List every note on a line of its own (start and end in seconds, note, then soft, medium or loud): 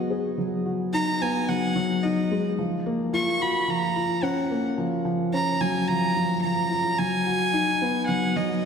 0.00 0.38 F#3 medium
0.00 2.31 G#3 loud
0.00 1.21 B3 loud
0.00 0.93 D#4 medium
0.00 0.66 F#4 medium
0.10 0.36 G#4 medium
0.38 0.64 F#3 medium
0.66 0.92 F#4 medium
0.93 1.09 D#4 loud
0.93 1.23 A#5 loud
1.21 1.47 B3 loud
1.21 1.50 G#5 loud
1.49 1.74 F#3 medium
1.49 2.04 F#5 loud
1.75 2.02 F#3 loud
2.03 2.19 D#4 loud
2.03 2.44 D#5 medium
2.31 2.57 G#3 loud
2.59 2.74 F3 medium
2.86 3.12 A#3 loud
3.13 3.39 F4 loud
3.13 3.43 C#6 loud
3.41 3.67 F#4 medium
3.41 3.71 B5 loud
3.68 3.94 F3 medium
3.68 4.25 A#5 loud
3.96 4.22 F4 medium
4.23 4.39 C#4 loud
4.23 4.65 F#5 medium
4.51 4.77 A#3 loud
4.78 5.04 F3 medium
5.05 5.31 F3 medium
5.33 5.49 C#4 loud
5.33 5.62 A#5 loud
5.61 5.87 F#3 loud
5.61 5.89 G#5 loud
5.88 6.04 F3 medium
5.88 6.42 A#5 loud
6.17 6.32 F3 medium
6.43 6.70 F3 medium
6.43 7.00 A#5 loud
6.71 6.97 F4 medium
6.99 7.25 F#3 medium
6.99 8.07 G#5 loud
7.26 7.52 F#4 medium
7.53 7.69 D#4 loud
7.82 8.07 B3 loud
8.08 8.34 F#3 medium
8.08 8.38 F#5 medium
8.36 8.62 F#3 loud
8.36 8.65 D#5 medium